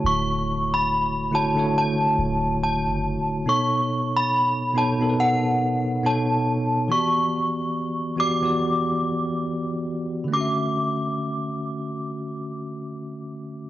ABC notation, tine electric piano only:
X:1
M:4/4
L:1/16
Q:"Swing 16ths" 1/4=70
K:D
V:1 name="Tine electric piano"
[D,A,EFc]4 z2 [D,A,EFc] [D,A,EFc]6 z3 | [B,,B,^DAc]4 z2 [B,,B,DAc] [B,,B,DA_B=B]4- [B,,B,DA_B=B] [B,,B,DAc]3 z | [E,B,FGd]4 z2 [E,B,FGd] [E,B,FGd]6 z3 | [D,A,CFe]16 |]